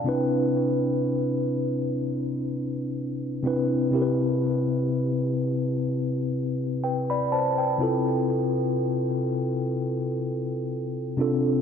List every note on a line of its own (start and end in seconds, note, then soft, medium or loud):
0.04 1.82 C3 medium
0.04 1.83 C4 medium
0.04 1.83 D4 medium
0.04 1.84 E4 medium
0.09 1.85 B4 medium
3.43 3.88 C3 medium
3.43 3.89 C4 medium
3.43 3.89 D4 medium
3.43 3.90 E4 medium
3.47 3.90 B4 medium
3.91 5.69 C3 medium
3.91 5.70 C4 medium
3.91 5.70 E4 medium
3.91 5.71 G4 medium
3.96 4.01 A#4 medium
4.02 5.75 B4 medium
6.84 7.09 B4 medium
6.84 7.08 G5 medium
7.10 7.31 D5 medium
7.10 7.31 B5 medium
7.32 7.57 C5 medium
7.32 7.57 A5 medium
7.58 8.04 B4 medium
7.58 8.04 G5 medium
7.78 9.56 C3 medium
7.78 9.57 C4 medium
7.78 9.58 E4 medium
7.78 9.58 F4 medium
7.83 9.59 A4 medium
11.17 11.62 C3 medium
11.17 11.62 C4 medium
11.17 11.62 D4 medium
11.17 11.62 F4 medium
11.21 11.62 A4 medium